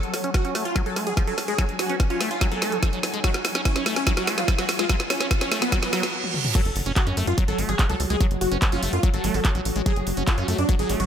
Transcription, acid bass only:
0.24 0.30 C#4 medium
0.45 0.54 C#4 medium
0.55 0.65 A3 medium
0.76 0.82 F#3 loud
0.86 0.98 F#3 medium
0.96 1.08 A3 medium
1.07 1.13 F3 medium
1.17 1.23 F3 medium
1.27 1.34 F#3 medium
1.48 1.55 G#3 medium
1.58 1.65 F#3 loud
1.90 1.96 C#4 medium
2.10 2.20 C#4 medium
2.21 2.30 A3 medium
2.41 2.48 F#3 loud
2.52 2.63 F#3 medium
2.62 2.74 A3 medium
2.72 2.79 F3 medium
2.83 2.89 F3 medium
2.93 2.99 F#3 medium
3.14 3.20 G#3 medium
3.24 3.30 F#3 loud
3.55 3.61 C#4 medium
3.76 3.85 C#4 medium
3.86 3.96 A3 medium
4.07 4.13 F#3 loud
4.17 4.29 F#3 medium
4.27 4.39 A3 medium
4.38 4.44 F3 medium
4.48 4.55 F3 medium
4.58 4.65 F#3 medium
4.79 4.86 G#3 medium
4.90 4.96 F#3 loud
5.21 5.27 C#4 medium
5.41 5.51 C#4 medium
5.52 5.61 A3 medium
5.72 5.79 F#3 loud
5.83 5.89 F#3 medium
5.93 6.03 F#3 loud
6.55 6.61 F#3 loud
6.86 6.92 C#4 medium
7.07 7.16 C#4 medium
7.17 7.27 A3 medium
7.38 7.44 F#3 loud
7.48 7.60 F#3 medium
7.58 7.70 A3 medium
7.69 7.75 F3 medium
7.79 7.86 F3 medium
7.90 7.96 F#3 medium
8.10 8.17 G#3 medium
8.21 8.27 F#3 loud
8.52 8.58 C#4 medium
8.72 8.82 C#4 medium
8.83 8.92 A3 medium
9.03 9.10 F#3 loud
9.14 9.25 F#3 medium
9.24 9.36 A3 medium
9.34 9.41 F3 medium
9.45 9.51 F3 medium
9.55 9.61 F#3 medium
9.76 9.82 G#3 medium
9.86 9.92 F#3 loud
10.17 10.23 C#4 medium
10.38 10.47 C#4 medium
10.48 10.58 A3 medium
10.69 10.75 F#3 loud
10.79 10.91 F#3 medium
10.90 11.01 A3 medium
11.00 11.06 F3 medium

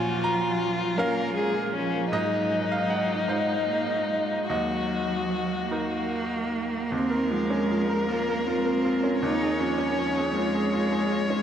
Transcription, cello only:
0.00 1.01 F3 medium
0.99 1.36 A#3 medium
1.37 1.73 G#3 medium
1.73 2.14 F3 medium
2.12 3.30 F#3 medium
3.29 3.67 G#3 medium
3.68 4.08 A#3 medium
4.09 4.51 G#3 medium
4.50 5.70 F#3 medium
5.70 6.94 A#3 medium
6.93 7.32 C4 medium
7.30 8.11 G#3 medium
8.09 8.49 A#3 medium
8.47 9.24 C4 medium
9.22 9.61 D#4 medium
9.60 10.35 C#4 medium
10.36 11.42 G#3 medium

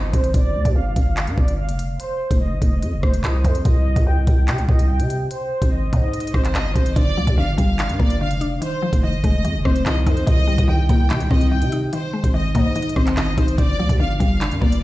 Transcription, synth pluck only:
6.96 7.37 D3 loud
7.17 8.21 F3 medium
7.38 7.78 D3 medium
7.58 8.61 G3 medium
7.79 8.20 D3 medium
7.99 8.62 A#3 medium
8.21 8.62 D3 medium
8.41 8.62 D4 medium
8.62 9.02 D#3 medium
8.82 9.86 F3 medium
9.03 9.43 D#3 medium
9.24 10.27 G#3 medium
9.45 9.85 D#3 medium
9.65 10.27 C4 medium
9.86 10.25 D#3 medium
10.06 10.27 D#4 medium
10.26 10.67 D#3 loud
10.47 11.51 G3 medium
10.68 11.10 D#3 medium
10.90 11.93 A#3 medium
11.11 11.50 D#3 medium
11.31 11.93 C4 medium
11.52 11.92 D#3 medium
11.72 11.93 D#4 medium
11.93 12.33 D#3 loud
12.13 13.17 G#3 medium
12.34 12.74 D#3 medium
12.55 13.58 A#3 medium
12.76 13.16 D#3 medium
12.97 13.58 C4 medium
13.17 13.58 D#3 medium
13.38 13.58 D#4 medium
13.58 13.99 D3 medium
13.79 14.83 F3 medium
14.00 14.40 D3 medium
14.20 14.83 G3 medium
14.41 14.82 D3 medium
14.61 14.83 A#3 medium

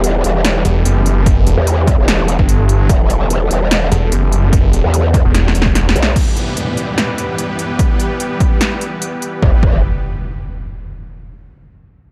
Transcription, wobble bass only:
0.00 0.23 E1 medium
0.24 0.64 E1 loud
1.57 1.97 E2 loud
1.98 2.37 E1 loud
2.89 3.49 E1 medium
3.51 3.90 E1 medium
4.84 5.23 E2 loud
5.96 6.15 B1 loud
9.42 9.54 E1 loud
9.63 9.82 E1 loud

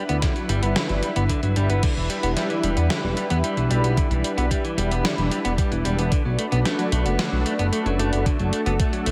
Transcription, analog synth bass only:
0.09 0.21 D2 medium
0.49 0.61 G1 medium
0.63 0.75 G1 medium
0.90 1.02 G1 medium
1.16 1.28 G1 medium
1.43 1.55 G1 medium
1.57 1.69 G1 medium
1.70 1.82 G1 medium
1.97 2.09 E1 medium
2.23 2.36 E1 medium
2.64 2.76 E1 medium
2.77 2.89 E2 medium
3.04 3.16 E1 medium
3.31 3.43 E2 medium
3.57 3.69 B1 medium
3.71 3.83 B1 medium
3.84 3.96 B1 medium
4.11 4.23 B1 medium
4.38 4.50 B1 medium
4.78 4.90 E1 medium
4.91 5.03 E1 medium
5.18 5.30 E1 medium
5.45 5.57 E1 medium
5.72 5.84 E1 medium
5.85 5.97 E1 medium
5.99 6.11 E1 medium
6.25 6.37 B1 medium
6.52 6.64 B1 medium
6.92 7.04 B1 medium
7.06 7.18 F#1 medium
7.32 7.44 B1 medium
7.59 7.71 F#1 medium
7.86 7.98 F#1 medium
7.99 8.11 F#1 medium
8.13 8.25 F#1 medium
8.40 8.52 F#1 medium
8.66 8.78 F#1 medium
9.07 9.11 B1 medium

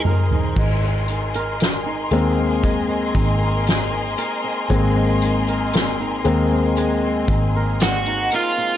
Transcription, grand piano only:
0.00 0.52 G#3 medium
0.00 0.53 G#4 soft
0.00 0.53 A#4 soft
0.00 0.53 C5 soft
2.12 2.80 G#3 soft
2.12 2.81 A#3 soft
2.12 2.81 C4 medium
4.70 5.18 G#3 soft
4.70 5.18 A#3 soft
4.70 5.18 C4 medium
6.24 7.76 G#3 medium
6.24 7.76 A#3 medium
6.24 7.77 C4 medium

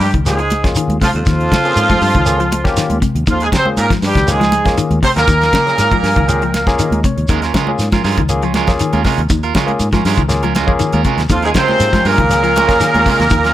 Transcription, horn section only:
0.00 0.11 G3 medium
0.00 0.11 G4 medium
0.26 0.73 G#3 medium
0.26 0.73 G#4 medium
1.04 1.09 F3 medium
1.04 1.09 F4 loud
1.15 2.99 F3 loud
1.15 2.99 F4 loud
3.30 3.41 F3 medium
3.30 3.41 F4 loud
3.43 3.48 G#3 medium
3.43 3.48 G#4 loud
3.57 3.68 C4 medium
3.57 3.68 C5 medium
3.79 3.90 A#3 medium
3.79 3.90 A#4 medium
4.06 4.28 G3 medium
4.06 4.28 G4 loud
4.31 4.76 G#3 medium
4.31 4.76 G#4 medium
5.04 5.10 C4 loud
5.04 5.10 C5 loud
5.18 7.01 A#3 loud
5.18 7.01 A#4 loud
11.32 11.43 F3 medium
11.32 11.43 F4 loud
11.45 11.50 G#3 medium
11.45 11.50 G#4 loud
11.57 12.03 C4 loud
11.57 12.03 C5 loud
12.08 13.54 A#3 loud
12.08 13.54 A#4 loud

